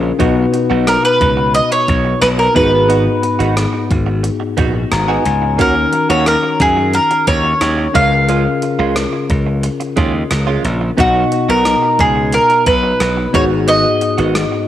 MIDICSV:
0, 0, Header, 1, 7, 480
1, 0, Start_track
1, 0, Tempo, 674157
1, 140, Time_signature, 4, 2, 24, 8
1, 10450, End_track
2, 0, Start_track
2, 0, Title_t, "Mandolin"
2, 0, Program_c, 0, 25
2, 625, Note_on_c, 0, 70, 81
2, 734, Note_off_c, 0, 70, 0
2, 746, Note_on_c, 0, 71, 89
2, 1098, Note_off_c, 0, 71, 0
2, 1101, Note_on_c, 0, 75, 95
2, 1222, Note_off_c, 0, 75, 0
2, 1225, Note_on_c, 0, 73, 92
2, 1574, Note_off_c, 0, 73, 0
2, 1577, Note_on_c, 0, 71, 81
2, 1613, Note_off_c, 0, 71, 0
2, 1701, Note_on_c, 0, 70, 75
2, 1819, Note_off_c, 0, 70, 0
2, 1821, Note_on_c, 0, 71, 69
2, 2752, Note_off_c, 0, 71, 0
2, 3993, Note_on_c, 0, 70, 78
2, 4340, Note_off_c, 0, 70, 0
2, 4342, Note_on_c, 0, 73, 77
2, 4465, Note_off_c, 0, 73, 0
2, 4468, Note_on_c, 0, 70, 75
2, 4710, Note_on_c, 0, 68, 73
2, 4711, Note_off_c, 0, 70, 0
2, 4945, Note_on_c, 0, 70, 81
2, 4952, Note_off_c, 0, 68, 0
2, 5177, Note_off_c, 0, 70, 0
2, 5180, Note_on_c, 0, 73, 89
2, 5661, Note_on_c, 0, 77, 87
2, 5674, Note_off_c, 0, 73, 0
2, 7072, Note_off_c, 0, 77, 0
2, 7832, Note_on_c, 0, 66, 77
2, 8185, Note_on_c, 0, 70, 84
2, 8197, Note_off_c, 0, 66, 0
2, 8546, Note_on_c, 0, 68, 78
2, 8553, Note_off_c, 0, 70, 0
2, 8785, Note_on_c, 0, 70, 80
2, 8790, Note_off_c, 0, 68, 0
2, 9006, Note_off_c, 0, 70, 0
2, 9018, Note_on_c, 0, 71, 88
2, 9500, Note_off_c, 0, 71, 0
2, 9503, Note_on_c, 0, 73, 85
2, 9567, Note_off_c, 0, 73, 0
2, 9743, Note_on_c, 0, 75, 99
2, 10450, Note_off_c, 0, 75, 0
2, 10450, End_track
3, 0, Start_track
3, 0, Title_t, "Tine electric piano"
3, 0, Program_c, 1, 4
3, 0, Control_c, 1, 64, 127
3, 0, Note_on_c, 1, 61, 56
3, 0, Note_on_c, 1, 65, 51
3, 0, Note_on_c, 1, 68, 49
3, 0, Note_on_c, 1, 70, 58
3, 133, Note_on_c, 1, 59, 71
3, 138, Note_on_c, 1, 63, 64
3, 140, Note_off_c, 1, 61, 0
3, 141, Note_off_c, 1, 65, 0
3, 141, Note_on_c, 1, 47, 71
3, 143, Note_off_c, 1, 68, 0
3, 143, Note_on_c, 1, 66, 70
3, 144, Note_off_c, 1, 70, 0
3, 150, Control_c, 1, 64, 0
3, 150, Note_on_c, 1, 71, 77
3, 294, Control_c, 1, 64, 127
3, 832, Note_off_c, 1, 47, 0
3, 1788, Note_off_c, 1, 59, 0
3, 1791, Note_off_c, 1, 63, 0
3, 1793, Note_off_c, 1, 66, 0
3, 1797, Note_off_c, 1, 71, 0
3, 1811, Note_on_c, 1, 59, 56
3, 1818, Note_on_c, 1, 63, 54
3, 1820, Note_on_c, 1, 44, 56
3, 1823, Note_on_c, 1, 66, 52
3, 1827, Control_c, 1, 64, 0
3, 1829, Note_on_c, 1, 68, 67
3, 1932, Control_c, 1, 64, 127
3, 2512, Note_off_c, 1, 44, 0
3, 3502, Note_on_c, 1, 82, 67
3, 3613, Note_off_c, 1, 82, 0
3, 3619, Note_on_c, 1, 80, 67
3, 3707, Note_off_c, 1, 59, 0
3, 3711, Note_off_c, 1, 63, 0
3, 3713, Note_off_c, 1, 66, 0
3, 3716, Note_off_c, 1, 68, 0
3, 3731, Note_off_c, 1, 80, 0
3, 3741, Note_on_c, 1, 80, 63
3, 3964, Note_off_c, 1, 80, 0
3, 3975, Note_on_c, 1, 61, 60
3, 3979, Note_on_c, 1, 63, 53
3, 3983, Note_on_c, 1, 51, 60
3, 3986, Note_on_c, 1, 66, 53
3, 3991, Control_c, 1, 64, 0
3, 3992, Note_on_c, 1, 70, 63
3, 4133, Control_c, 1, 64, 127
3, 4673, Note_off_c, 1, 51, 0
3, 5629, Note_off_c, 1, 61, 0
3, 5631, Note_off_c, 1, 63, 0
3, 5635, Note_off_c, 1, 66, 0
3, 5638, Note_off_c, 1, 70, 0
3, 5650, Note_on_c, 1, 61, 60
3, 5655, Note_on_c, 1, 65, 54
3, 5659, Note_on_c, 1, 49, 59
3, 5661, Note_on_c, 1, 68, 55
3, 5668, Control_c, 1, 64, 0
3, 5668, Note_on_c, 1, 70, 66
3, 5774, Control_c, 1, 64, 127
3, 6351, Note_off_c, 1, 49, 0
3, 7546, Note_off_c, 1, 61, 0
3, 7549, Note_off_c, 1, 65, 0
3, 7552, Note_off_c, 1, 68, 0
3, 7556, Note_off_c, 1, 70, 0
3, 7810, Note_on_c, 1, 59, 62
3, 7815, Note_on_c, 1, 63, 58
3, 7819, Note_on_c, 1, 47, 62
3, 7821, Note_on_c, 1, 66, 56
3, 7826, Note_on_c, 1, 75, 67
3, 7830, Control_c, 1, 64, 0
3, 7973, Control_c, 1, 64, 127
3, 8511, Note_off_c, 1, 47, 0
3, 9466, Note_off_c, 1, 59, 0
3, 9469, Note_off_c, 1, 63, 0
3, 9472, Note_off_c, 1, 66, 0
3, 9475, Note_off_c, 1, 75, 0
3, 9489, Note_on_c, 1, 59, 58
3, 9495, Note_on_c, 1, 63, 55
3, 9496, Note_on_c, 1, 44, 58
3, 9501, Note_on_c, 1, 66, 58
3, 9505, Note_on_c, 1, 68, 68
3, 9510, Control_c, 1, 64, 0
3, 9614, Control_c, 1, 64, 127
3, 10190, Note_off_c, 1, 44, 0
3, 10450, Note_off_c, 1, 59, 0
3, 10450, Note_off_c, 1, 63, 0
3, 10450, Note_off_c, 1, 66, 0
3, 10450, Note_off_c, 1, 68, 0
3, 10450, End_track
4, 0, Start_track
4, 0, Title_t, "Clean electric guitar"
4, 0, Program_c, 2, 27
4, 137, Note_on_c, 2, 59, 72
4, 143, Note_on_c, 2, 63, 83
4, 146, Note_on_c, 2, 66, 91
4, 247, Note_off_c, 2, 66, 0
4, 254, Note_off_c, 2, 63, 0
4, 274, Note_off_c, 2, 59, 0
4, 496, Note_on_c, 2, 66, 55
4, 501, Note_on_c, 2, 63, 53
4, 505, Note_on_c, 2, 59, 46
4, 604, Note_off_c, 2, 66, 0
4, 606, Note_off_c, 2, 63, 0
4, 608, Note_off_c, 2, 59, 0
4, 1815, Note_on_c, 2, 59, 81
4, 1819, Note_on_c, 2, 63, 89
4, 1824, Note_on_c, 2, 66, 89
4, 1925, Note_off_c, 2, 66, 0
4, 1931, Note_off_c, 2, 63, 0
4, 1953, Note_off_c, 2, 59, 0
4, 2055, Note_on_c, 2, 59, 77
4, 2060, Note_on_c, 2, 63, 83
4, 2064, Note_on_c, 2, 66, 80
4, 2170, Note_off_c, 2, 66, 0
4, 2175, Note_off_c, 2, 63, 0
4, 2193, Note_off_c, 2, 59, 0
4, 2413, Note_on_c, 2, 66, 62
4, 2419, Note_on_c, 2, 63, 54
4, 2424, Note_on_c, 2, 59, 49
4, 2523, Note_off_c, 2, 66, 0
4, 2525, Note_off_c, 2, 59, 0
4, 2525, Note_off_c, 2, 63, 0
4, 3254, Note_on_c, 2, 59, 68
4, 3261, Note_on_c, 2, 63, 83
4, 3264, Note_on_c, 2, 66, 79
4, 3365, Note_off_c, 2, 66, 0
4, 3372, Note_off_c, 2, 63, 0
4, 3392, Note_off_c, 2, 59, 0
4, 3618, Note_on_c, 2, 66, 76
4, 3622, Note_on_c, 2, 63, 70
4, 3625, Note_on_c, 2, 59, 58
4, 3728, Note_off_c, 2, 59, 0
4, 3732, Note_off_c, 2, 63, 0
4, 3735, Note_off_c, 2, 66, 0
4, 3976, Note_on_c, 2, 58, 79
4, 3981, Note_on_c, 2, 61, 85
4, 3985, Note_on_c, 2, 66, 90
4, 4092, Note_off_c, 2, 66, 0
4, 4097, Note_off_c, 2, 61, 0
4, 4113, Note_off_c, 2, 58, 0
4, 4339, Note_on_c, 2, 66, 52
4, 4346, Note_on_c, 2, 61, 46
4, 4349, Note_on_c, 2, 58, 48
4, 4446, Note_off_c, 2, 66, 0
4, 4449, Note_off_c, 2, 61, 0
4, 4451, Note_off_c, 2, 58, 0
4, 5656, Note_on_c, 2, 56, 78
4, 5662, Note_on_c, 2, 61, 91
4, 5666, Note_on_c, 2, 65, 90
4, 5770, Note_off_c, 2, 65, 0
4, 5778, Note_off_c, 2, 61, 0
4, 5793, Note_off_c, 2, 56, 0
4, 5899, Note_on_c, 2, 56, 77
4, 5904, Note_on_c, 2, 61, 80
4, 5907, Note_on_c, 2, 65, 90
4, 6011, Note_off_c, 2, 65, 0
4, 6017, Note_off_c, 2, 61, 0
4, 6035, Note_off_c, 2, 56, 0
4, 6258, Note_on_c, 2, 65, 60
4, 6264, Note_on_c, 2, 61, 54
4, 6267, Note_on_c, 2, 56, 45
4, 6365, Note_off_c, 2, 65, 0
4, 6368, Note_off_c, 2, 61, 0
4, 6369, Note_off_c, 2, 56, 0
4, 7095, Note_on_c, 2, 56, 83
4, 7100, Note_on_c, 2, 61, 82
4, 7103, Note_on_c, 2, 65, 83
4, 7208, Note_off_c, 2, 65, 0
4, 7215, Note_off_c, 2, 61, 0
4, 7233, Note_off_c, 2, 56, 0
4, 7454, Note_on_c, 2, 65, 78
4, 7459, Note_on_c, 2, 61, 64
4, 7464, Note_on_c, 2, 56, 60
4, 7570, Note_off_c, 2, 56, 0
4, 7574, Note_off_c, 2, 61, 0
4, 7577, Note_off_c, 2, 65, 0
4, 7814, Note_on_c, 2, 59, 80
4, 7820, Note_on_c, 2, 63, 91
4, 7824, Note_on_c, 2, 66, 89
4, 7931, Note_off_c, 2, 66, 0
4, 7937, Note_off_c, 2, 63, 0
4, 7953, Note_off_c, 2, 59, 0
4, 8178, Note_on_c, 2, 66, 56
4, 8184, Note_on_c, 2, 63, 55
4, 8187, Note_on_c, 2, 59, 51
4, 8285, Note_off_c, 2, 66, 0
4, 8288, Note_off_c, 2, 63, 0
4, 8289, Note_off_c, 2, 59, 0
4, 9498, Note_on_c, 2, 59, 75
4, 9501, Note_on_c, 2, 63, 76
4, 9506, Note_on_c, 2, 66, 78
4, 9609, Note_off_c, 2, 66, 0
4, 9616, Note_off_c, 2, 63, 0
4, 9634, Note_off_c, 2, 59, 0
4, 9736, Note_on_c, 2, 59, 72
4, 9742, Note_on_c, 2, 63, 78
4, 9744, Note_on_c, 2, 66, 84
4, 9848, Note_off_c, 2, 66, 0
4, 9854, Note_off_c, 2, 63, 0
4, 9874, Note_off_c, 2, 59, 0
4, 10095, Note_on_c, 2, 66, 62
4, 10100, Note_on_c, 2, 63, 52
4, 10104, Note_on_c, 2, 59, 51
4, 10203, Note_off_c, 2, 66, 0
4, 10206, Note_off_c, 2, 63, 0
4, 10208, Note_off_c, 2, 59, 0
4, 10450, End_track
5, 0, Start_track
5, 0, Title_t, "Slap bass"
5, 0, Program_c, 3, 36
5, 0, Note_on_c, 3, 34, 85
5, 81, Note_off_c, 3, 34, 0
5, 141, Note_on_c, 3, 35, 99
5, 321, Note_off_c, 3, 35, 0
5, 502, Note_on_c, 3, 35, 86
5, 681, Note_off_c, 3, 35, 0
5, 862, Note_on_c, 3, 37, 84
5, 1131, Note_off_c, 3, 37, 0
5, 1341, Note_on_c, 3, 35, 79
5, 1521, Note_off_c, 3, 35, 0
5, 1578, Note_on_c, 3, 35, 83
5, 1759, Note_off_c, 3, 35, 0
5, 1823, Note_on_c, 3, 32, 85
5, 2182, Note_off_c, 3, 32, 0
5, 2419, Note_on_c, 3, 32, 83
5, 2600, Note_off_c, 3, 32, 0
5, 2782, Note_on_c, 3, 32, 80
5, 3051, Note_off_c, 3, 32, 0
5, 3259, Note_on_c, 3, 34, 82
5, 3440, Note_off_c, 3, 34, 0
5, 3503, Note_on_c, 3, 32, 81
5, 3682, Note_off_c, 3, 32, 0
5, 3741, Note_on_c, 3, 37, 80
5, 3980, Note_off_c, 3, 37, 0
5, 3980, Note_on_c, 3, 39, 101
5, 4160, Note_off_c, 3, 39, 0
5, 4340, Note_on_c, 3, 39, 93
5, 4520, Note_off_c, 3, 39, 0
5, 4699, Note_on_c, 3, 42, 85
5, 4970, Note_off_c, 3, 42, 0
5, 5179, Note_on_c, 3, 39, 75
5, 5360, Note_off_c, 3, 39, 0
5, 5419, Note_on_c, 3, 39, 85
5, 5599, Note_off_c, 3, 39, 0
5, 5659, Note_on_c, 3, 37, 93
5, 6020, Note_off_c, 3, 37, 0
5, 6259, Note_on_c, 3, 37, 88
5, 6439, Note_off_c, 3, 37, 0
5, 6621, Note_on_c, 3, 37, 82
5, 6891, Note_off_c, 3, 37, 0
5, 7100, Note_on_c, 3, 39, 81
5, 7280, Note_off_c, 3, 39, 0
5, 7342, Note_on_c, 3, 37, 86
5, 7521, Note_off_c, 3, 37, 0
5, 7579, Note_on_c, 3, 34, 88
5, 7760, Note_off_c, 3, 34, 0
5, 7819, Note_on_c, 3, 35, 100
5, 7999, Note_off_c, 3, 35, 0
5, 8180, Note_on_c, 3, 35, 86
5, 8360, Note_off_c, 3, 35, 0
5, 8540, Note_on_c, 3, 37, 83
5, 8810, Note_off_c, 3, 37, 0
5, 9018, Note_on_c, 3, 35, 78
5, 9199, Note_off_c, 3, 35, 0
5, 9259, Note_on_c, 3, 35, 86
5, 9440, Note_off_c, 3, 35, 0
5, 9499, Note_on_c, 3, 32, 86
5, 9859, Note_off_c, 3, 32, 0
5, 10099, Note_on_c, 3, 32, 87
5, 10279, Note_off_c, 3, 32, 0
5, 10450, End_track
6, 0, Start_track
6, 0, Title_t, "Muted clean electric guitar strokes"
6, 19, Note_on_c, 9, 29, 37
6, 91, Note_off_c, 9, 29, 0
6, 256, Note_on_c, 9, 29, 44
6, 327, Note_off_c, 9, 29, 0
6, 375, Note_on_c, 9, 29, 36
6, 446, Note_off_c, 9, 29, 0
6, 619, Note_on_c, 9, 29, 38
6, 690, Note_off_c, 9, 29, 0
6, 736, Note_on_c, 9, 29, 34
6, 807, Note_off_c, 9, 29, 0
6, 976, Note_on_c, 9, 29, 50
6, 1047, Note_off_c, 9, 29, 0
6, 1096, Note_on_c, 9, 29, 37
6, 1167, Note_off_c, 9, 29, 0
6, 1220, Note_on_c, 9, 29, 42
6, 1291, Note_off_c, 9, 29, 0
6, 1457, Note_on_c, 9, 29, 37
6, 1528, Note_off_c, 9, 29, 0
6, 1577, Note_on_c, 9, 29, 33
6, 1648, Note_off_c, 9, 29, 0
6, 1695, Note_on_c, 9, 29, 37
6, 1766, Note_off_c, 9, 29, 0
6, 1934, Note_on_c, 9, 29, 44
6, 2005, Note_off_c, 9, 29, 0
6, 2179, Note_on_c, 9, 29, 36
6, 2250, Note_off_c, 9, 29, 0
6, 2298, Note_on_c, 9, 29, 38
6, 2369, Note_off_c, 9, 29, 0
6, 2654, Note_on_c, 9, 29, 36
6, 2725, Note_off_c, 9, 29, 0
6, 2894, Note_on_c, 9, 29, 47
6, 2965, Note_off_c, 9, 29, 0
6, 3014, Note_on_c, 9, 29, 35
6, 3085, Note_off_c, 9, 29, 0
6, 3133, Note_on_c, 9, 29, 45
6, 3204, Note_off_c, 9, 29, 0
6, 3374, Note_on_c, 9, 29, 43
6, 3445, Note_off_c, 9, 29, 0
6, 3499, Note_on_c, 9, 29, 37
6, 3570, Note_off_c, 9, 29, 0
6, 3737, Note_on_c, 9, 29, 43
6, 3808, Note_off_c, 9, 29, 0
6, 3858, Note_on_c, 9, 29, 47
6, 3929, Note_off_c, 9, 29, 0
6, 4101, Note_on_c, 9, 29, 46
6, 4172, Note_off_c, 9, 29, 0
6, 4219, Note_on_c, 9, 29, 32
6, 4290, Note_off_c, 9, 29, 0
6, 4459, Note_on_c, 9, 29, 38
6, 4530, Note_off_c, 9, 29, 0
6, 4579, Note_on_c, 9, 29, 34
6, 4651, Note_off_c, 9, 29, 0
6, 4820, Note_on_c, 9, 29, 48
6, 4891, Note_off_c, 9, 29, 0
6, 4939, Note_on_c, 9, 29, 40
6, 5010, Note_off_c, 9, 29, 0
6, 5061, Note_on_c, 9, 29, 44
6, 5132, Note_off_c, 9, 29, 0
6, 5295, Note_on_c, 9, 29, 44
6, 5366, Note_off_c, 9, 29, 0
6, 5419, Note_on_c, 9, 29, 41
6, 5490, Note_off_c, 9, 29, 0
6, 5537, Note_on_c, 9, 29, 46
6, 5608, Note_off_c, 9, 29, 0
6, 5779, Note_on_c, 9, 29, 39
6, 5850, Note_off_c, 9, 29, 0
6, 6020, Note_on_c, 9, 29, 39
6, 6091, Note_off_c, 9, 29, 0
6, 6140, Note_on_c, 9, 29, 38
6, 6211, Note_off_c, 9, 29, 0
6, 6378, Note_on_c, 9, 29, 46
6, 6450, Note_off_c, 9, 29, 0
6, 6500, Note_on_c, 9, 29, 38
6, 6571, Note_off_c, 9, 29, 0
6, 6740, Note_on_c, 9, 29, 37
6, 6811, Note_off_c, 9, 29, 0
6, 6859, Note_on_c, 9, 29, 32
6, 6931, Note_off_c, 9, 29, 0
6, 6979, Note_on_c, 9, 29, 47
6, 7050, Note_off_c, 9, 29, 0
6, 7216, Note_on_c, 9, 29, 50
6, 7287, Note_off_c, 9, 29, 0
6, 7338, Note_on_c, 9, 29, 42
6, 7409, Note_off_c, 9, 29, 0
6, 7579, Note_on_c, 9, 29, 45
6, 7650, Note_off_c, 9, 29, 0
6, 7699, Note_on_c, 9, 29, 54
6, 7770, Note_off_c, 9, 29, 0
6, 7939, Note_on_c, 9, 29, 38
6, 8011, Note_off_c, 9, 29, 0
6, 8059, Note_on_c, 9, 29, 38
6, 8130, Note_off_c, 9, 29, 0
6, 8299, Note_on_c, 9, 29, 39
6, 8371, Note_off_c, 9, 29, 0
6, 8419, Note_on_c, 9, 29, 45
6, 8490, Note_off_c, 9, 29, 0
6, 8655, Note_on_c, 9, 29, 37
6, 8727, Note_off_c, 9, 29, 0
6, 8780, Note_on_c, 9, 29, 36
6, 8852, Note_off_c, 9, 29, 0
6, 8900, Note_on_c, 9, 29, 37
6, 8971, Note_off_c, 9, 29, 0
6, 9138, Note_on_c, 9, 29, 40
6, 9209, Note_off_c, 9, 29, 0
6, 9261, Note_on_c, 9, 29, 44
6, 9332, Note_off_c, 9, 29, 0
6, 9379, Note_on_c, 9, 29, 41
6, 9451, Note_off_c, 9, 29, 0
6, 9618, Note_on_c, 9, 29, 37
6, 9689, Note_off_c, 9, 29, 0
6, 9857, Note_on_c, 9, 29, 43
6, 9928, Note_off_c, 9, 29, 0
6, 9975, Note_on_c, 9, 29, 33
6, 10047, Note_off_c, 9, 29, 0
6, 10340, Note_on_c, 9, 29, 40
6, 10411, Note_off_c, 9, 29, 0
6, 10450, End_track
7, 0, Start_track
7, 0, Title_t, "Drums"
7, 141, Note_on_c, 9, 36, 94
7, 142, Note_on_c, 9, 42, 82
7, 212, Note_off_c, 9, 36, 0
7, 213, Note_off_c, 9, 42, 0
7, 382, Note_on_c, 9, 42, 63
7, 453, Note_off_c, 9, 42, 0
7, 621, Note_on_c, 9, 37, 102
7, 623, Note_on_c, 9, 42, 93
7, 692, Note_off_c, 9, 37, 0
7, 694, Note_off_c, 9, 42, 0
7, 861, Note_on_c, 9, 42, 73
7, 862, Note_on_c, 9, 36, 83
7, 932, Note_off_c, 9, 42, 0
7, 933, Note_off_c, 9, 36, 0
7, 1100, Note_on_c, 9, 42, 86
7, 1171, Note_off_c, 9, 42, 0
7, 1222, Note_on_c, 9, 42, 46
7, 1293, Note_off_c, 9, 42, 0
7, 1340, Note_on_c, 9, 42, 73
7, 1341, Note_on_c, 9, 36, 93
7, 1412, Note_off_c, 9, 36, 0
7, 1412, Note_off_c, 9, 42, 0
7, 1582, Note_on_c, 9, 37, 105
7, 1582, Note_on_c, 9, 42, 96
7, 1653, Note_off_c, 9, 42, 0
7, 1654, Note_off_c, 9, 37, 0
7, 1822, Note_on_c, 9, 36, 94
7, 1823, Note_on_c, 9, 42, 62
7, 1893, Note_off_c, 9, 36, 0
7, 1895, Note_off_c, 9, 42, 0
7, 2063, Note_on_c, 9, 42, 78
7, 2134, Note_off_c, 9, 42, 0
7, 2302, Note_on_c, 9, 42, 63
7, 2373, Note_off_c, 9, 42, 0
7, 2422, Note_on_c, 9, 42, 47
7, 2493, Note_off_c, 9, 42, 0
7, 2541, Note_on_c, 9, 37, 103
7, 2542, Note_on_c, 9, 42, 95
7, 2612, Note_off_c, 9, 37, 0
7, 2614, Note_off_c, 9, 42, 0
7, 2781, Note_on_c, 9, 36, 84
7, 2782, Note_on_c, 9, 42, 73
7, 2852, Note_off_c, 9, 36, 0
7, 2853, Note_off_c, 9, 42, 0
7, 3018, Note_on_c, 9, 42, 84
7, 3089, Note_off_c, 9, 42, 0
7, 3258, Note_on_c, 9, 42, 76
7, 3259, Note_on_c, 9, 36, 91
7, 3329, Note_off_c, 9, 42, 0
7, 3331, Note_off_c, 9, 36, 0
7, 3500, Note_on_c, 9, 37, 106
7, 3500, Note_on_c, 9, 42, 89
7, 3571, Note_off_c, 9, 37, 0
7, 3571, Note_off_c, 9, 42, 0
7, 3741, Note_on_c, 9, 42, 63
7, 3812, Note_off_c, 9, 42, 0
7, 3979, Note_on_c, 9, 42, 76
7, 3980, Note_on_c, 9, 36, 95
7, 4051, Note_off_c, 9, 36, 0
7, 4051, Note_off_c, 9, 42, 0
7, 4219, Note_on_c, 9, 42, 65
7, 4290, Note_off_c, 9, 42, 0
7, 4459, Note_on_c, 9, 37, 103
7, 4461, Note_on_c, 9, 42, 93
7, 4531, Note_off_c, 9, 37, 0
7, 4532, Note_off_c, 9, 42, 0
7, 4699, Note_on_c, 9, 42, 75
7, 4700, Note_on_c, 9, 36, 82
7, 4770, Note_off_c, 9, 42, 0
7, 4771, Note_off_c, 9, 36, 0
7, 4938, Note_on_c, 9, 42, 83
7, 5009, Note_off_c, 9, 42, 0
7, 5060, Note_on_c, 9, 42, 45
7, 5131, Note_off_c, 9, 42, 0
7, 5177, Note_on_c, 9, 42, 72
7, 5179, Note_on_c, 9, 36, 85
7, 5249, Note_off_c, 9, 42, 0
7, 5250, Note_off_c, 9, 36, 0
7, 5418, Note_on_c, 9, 42, 99
7, 5419, Note_on_c, 9, 37, 102
7, 5489, Note_off_c, 9, 42, 0
7, 5490, Note_off_c, 9, 37, 0
7, 5659, Note_on_c, 9, 36, 91
7, 5660, Note_on_c, 9, 42, 64
7, 5731, Note_off_c, 9, 36, 0
7, 5731, Note_off_c, 9, 42, 0
7, 5899, Note_on_c, 9, 42, 79
7, 5971, Note_off_c, 9, 42, 0
7, 6139, Note_on_c, 9, 42, 67
7, 6210, Note_off_c, 9, 42, 0
7, 6379, Note_on_c, 9, 37, 110
7, 6380, Note_on_c, 9, 42, 94
7, 6450, Note_off_c, 9, 37, 0
7, 6452, Note_off_c, 9, 42, 0
7, 6619, Note_on_c, 9, 42, 75
7, 6620, Note_on_c, 9, 36, 85
7, 6691, Note_off_c, 9, 36, 0
7, 6691, Note_off_c, 9, 42, 0
7, 6859, Note_on_c, 9, 42, 83
7, 6930, Note_off_c, 9, 42, 0
7, 6982, Note_on_c, 9, 42, 46
7, 7053, Note_off_c, 9, 42, 0
7, 7097, Note_on_c, 9, 42, 75
7, 7099, Note_on_c, 9, 36, 89
7, 7168, Note_off_c, 9, 42, 0
7, 7170, Note_off_c, 9, 36, 0
7, 7339, Note_on_c, 9, 37, 110
7, 7339, Note_on_c, 9, 42, 90
7, 7410, Note_off_c, 9, 37, 0
7, 7410, Note_off_c, 9, 42, 0
7, 7580, Note_on_c, 9, 42, 61
7, 7652, Note_off_c, 9, 42, 0
7, 7819, Note_on_c, 9, 36, 98
7, 7819, Note_on_c, 9, 42, 79
7, 7890, Note_off_c, 9, 36, 0
7, 7890, Note_off_c, 9, 42, 0
7, 8059, Note_on_c, 9, 42, 67
7, 8130, Note_off_c, 9, 42, 0
7, 8297, Note_on_c, 9, 37, 108
7, 8298, Note_on_c, 9, 42, 93
7, 8368, Note_off_c, 9, 37, 0
7, 8370, Note_off_c, 9, 42, 0
7, 8537, Note_on_c, 9, 42, 73
7, 8539, Note_on_c, 9, 36, 84
7, 8609, Note_off_c, 9, 42, 0
7, 8610, Note_off_c, 9, 36, 0
7, 8776, Note_on_c, 9, 42, 79
7, 8847, Note_off_c, 9, 42, 0
7, 8899, Note_on_c, 9, 42, 46
7, 8970, Note_off_c, 9, 42, 0
7, 9017, Note_on_c, 9, 42, 74
7, 9018, Note_on_c, 9, 36, 90
7, 9088, Note_off_c, 9, 42, 0
7, 9089, Note_off_c, 9, 36, 0
7, 9258, Note_on_c, 9, 42, 96
7, 9259, Note_on_c, 9, 37, 103
7, 9329, Note_off_c, 9, 42, 0
7, 9330, Note_off_c, 9, 37, 0
7, 9499, Note_on_c, 9, 36, 95
7, 9499, Note_on_c, 9, 42, 62
7, 9570, Note_off_c, 9, 36, 0
7, 9570, Note_off_c, 9, 42, 0
7, 9738, Note_on_c, 9, 42, 82
7, 9809, Note_off_c, 9, 42, 0
7, 9977, Note_on_c, 9, 42, 64
7, 10049, Note_off_c, 9, 42, 0
7, 10098, Note_on_c, 9, 42, 45
7, 10169, Note_off_c, 9, 42, 0
7, 10218, Note_on_c, 9, 37, 108
7, 10219, Note_on_c, 9, 42, 95
7, 10289, Note_off_c, 9, 37, 0
7, 10291, Note_off_c, 9, 42, 0
7, 10450, End_track
0, 0, End_of_file